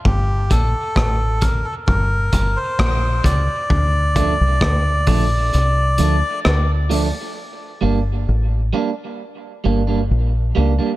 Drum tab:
HH |-x-x-x-x|-x-opx-o|--------|
SD |--r---r-|--r---r-|--------|
BD |oooooooo|oooo----|--------|